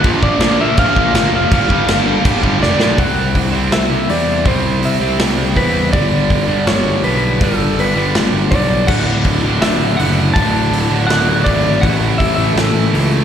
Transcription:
0.04 A#1 A#2 F3 A#3, kick, crash
0.22 A#1 A#2 F3 A#3 D5, kick
0.40 A#1 A#2 F3 A#3, snare, crash
0.60 A#2 F3 A#3 E5
0.77 A#1 A#2 F3 A#3 F5, kick, crash
0.96 A#1 A#2 F3 A#3, kick
1.14 G1 A#2 F3 A#3, snare, crash
1.32 F1 A#2 F3 A#3 F5
1.51 G1 G2 D3 G3 F5, kick, crash
1.69 G1 G2 D3 G3, kick
1.88 G1 G2 D3 G3, snare, crash
2.06 G2 D3 G3
2.23 G1 G2 D3 G3, kick, crash
2.42 G1 G2 D3 G3, kick
2.60 F1 G2 D3 G3 D5, snare
2.78 B1 G2 D3 G3, snare
2.96 C2 C3 G3 C4 F#5, kick, open hi-hat
3.35 C2, kick, open hi-hat
3.52 C2 C3 G3 C4
3.71 C2 E5, snare, open hi-hat
3.90 C2
4.07 E2 C3 G3 C4 D5, open hi-hat
4.45 C2 C3 G3 C4 C5, kick, open hi-hat
4.82 C2 E5, open hi-hat
5.00 C2 C3 G3 C4
5.19 C2, snare, open hi-hat
5.37 C2
5.56 E2 C3 G3 C4 B4, kick, open hi-hat
5.92 G1 G2 D3 G3 D5, kick, open hi-hat
6.30 G1, kick, open hi-hat
6.48 G1 G2 D3 G3
6.66 G1 C#5, snare, open hi-hat
6.85 G1
7.03 B1 G2 D3 G3 B4, open hi-hat
7.40 G1 G2 D3 G3 A4, kick, open hi-hat
7.77 G1 B4, open hi-hat
7.96 G1 G2 D3 G3
8.14 G1, snare, open hi-hat
8.33 G1
8.50 B1 G2 D3 G3 D5, kick, open hi-hat
8.87 D1 D2 A2 D3 F#5, kick, crash
9.24 D1, kick, open hi-hat
9.42 D1 D2 A2 D3
9.61 D1 E5, snare, open hi-hat
9.80 D1
9.97 F#1 D2 A2 F#5, open hi-hat
10.01 D3
10.34 D1 D2 A2 D3 A5, kick, open hi-hat
10.71 D1, open hi-hat
10.89 D1 D2 A2 D3
11.07 D1 F#5, snare, open hi-hat
11.27 D1
11.44 G#1 D2 A2 D5, kick, open hi-hat
11.49 D3
11.81 A1 A2 E3 A3 F#5, kick, open hi-hat
12.18 A1 E5, kick, open hi-hat
12.35 A1 E3 A3 E5
12.39 A2
12.53 A1 A4
12.57 snare, open hi-hat
12.74 A1
12.93 C#2 A2 E3 A3, open hi-hat

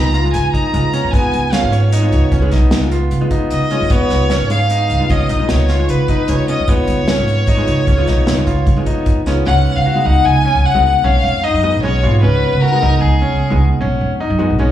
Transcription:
Already playing: C#2 G#3 B3 D#4 F4 A#5
0.14 F4, closed hi-hat
0.24 G#3 B3 D#4 F4
0.33 C#3 G#5, closed hi-hat
0.53 D#4 A#5, kick, closed hi-hat
0.73 C#3 G#3 B3 D#4 F4, closed hi-hat
0.93 C#4, closed hi-hat
1.04 F2
1.11 C#2 G#3 B3 D#4 F4 G#5, kick, closed hi-hat
1.33 C#2, closed hi-hat
1.52 G#3 B3 C#4 D#4 F4 F5, snare, closed hi-hat
1.63 G#1
1.72 C#5, closed hi-hat
1.92 D#4, snare, closed hi-hat
2.02 G#3 B3 D#4 F4
2.12 C#2, closed hi-hat
2.32 C#2 C#4, kick, closed hi-hat
2.41 G#3 B3 D#4 G#4
2.51 B1 D#4, snare, closed hi-hat
2.71 C#2, snare, closed hi-hat
2.81 G#3 B3 D#4 F4
2.91 F4, closed hi-hat
3.11 C#3, closed hi-hat
3.21 G#3 B3 D#4 F4
3.31 D#4, kick, closed hi-hat
3.50 C#3 D#5, closed hi-hat
3.70 G#3 B3 C#4 D#4 F4, closed hi-hat
3.81 F2
3.90 C#2 B3 C#5, kick, closed hi-hat
4.10 C#2 G#3 B3 D#4 F4, snare, closed hi-hat
4.30 C#4, snare, closed hi-hat
4.40 G#1
4.50 G#3 B3 D#4 G#4 F5, closed hi-hat
4.70 D#4, closed hi-hat
4.90 C#2, closed hi-hat
4.99 G#3 B3 D#4 F4
5.10 C#2 C#4 D#5, kick, closed hi-hat
5.29 B1 D#4, closed hi-hat
5.39 G#3 B3 D#4 F4
5.49 C#2 C#5, snare, closed hi-hat
5.69 F4, snare, closed hi-hat
5.79 G#3 B3 D#4 F4
5.89 C#3 B4, closed hi-hat
6.08 D#4, kick, closed hi-hat
6.28 C#3 G#3 B3 D#4 F4 C#5, closed hi-hat
6.48 C#4 D#5, closed hi-hat
6.59 F2
6.68 C#2 G#3 B3 D#4 F4 C#5, kick, closed hi-hat
6.87 C#2, kick, closed hi-hat
7.07 G#3 B3 C#4 D#4 F4, snare, closed hi-hat
7.19 G#1
7.28 closed hi-hat
7.47 D#4, kick, closed hi-hat
7.57 G#3 B3 D#4 F4
7.67 C#2, closed hi-hat
7.87 C#2 C#4, kick, closed hi-hat
7.97 G#3 B3 D#4 F4
8.07 B1 D#4, snare, closed hi-hat
8.27 C#2, snare, closed hi-hat
8.37 G#3 B3 D#4 F4
8.47 F4, kick, closed hi-hat
8.66 C#3, kick, closed hi-hat
8.76 G#3 B3 D#4 F4
8.86 D#4, kick, closed hi-hat
9.06 D#2, kick, closed hi-hat
9.26 C#2 G#3 B3 C#4 D#4 F4, snare, closed hi-hat
9.45 C#2 G#3 B3 C#4 D#4 F#4 F#5
9.76 C#3 F5
9.86 F#4
9.95 G#3 B3 D#4 F#4
10.05 C#2 D#4 F#5
10.25 C#2 G#5
10.45 C#4
10.55 C#2
10.65 F#5
10.74 C#2 G#3 B3 D#4 F#4
11.04 B1 C#4 F5
11.24 F2
11.43 D#4 D#5
11.54 F#2
11.63 G#3 B3 D#4 F#4
11.74 B1
11.83 G#3 B3 C#4 D#4 F#4 C#5
12.03 G#1 G#3 B3 D#4 F4 F#4
12.22 C#2 G#3 B3 C#4 D#4 F#4 B4
12.53 C#3
12.61 F#4 A#4
12.73 G#3 B3 D#4 F#4
12.82 C#2 D#4
13.01 C#2 G#4
13.22 C#4
13.32 C#2
13.50 C#2 G#3 B3 D#4 F#4
13.81 B1 C#4
14.01 F2
14.20 D#4
14.30 F#2
14.39 G#3 B3 D#4 F#4
14.50 B1
14.59 G#3 B3 C#4 D#4 F#4 C#5

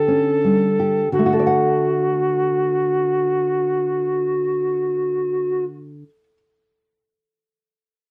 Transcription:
Already playing: D3 G4 A4
0.08 C#4
0.44 G3
0.80 G4
1.12 D3 F#4
1.19 A3
1.26 F#4
1.33 A4
1.39 D5
1.47 F#5

